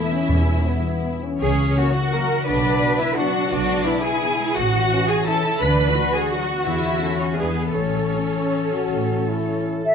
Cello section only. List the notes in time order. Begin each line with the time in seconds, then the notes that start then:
Already playing: B3
1.40 G#4
1.77 F#4
2.14 A#4
2.47 B4
3.18 D4
3.51 F#4
3.85 E4
4.56 F#4
5.27 E4
5.61 D4
5.96 F#4
7.38 G#4
7.75 A4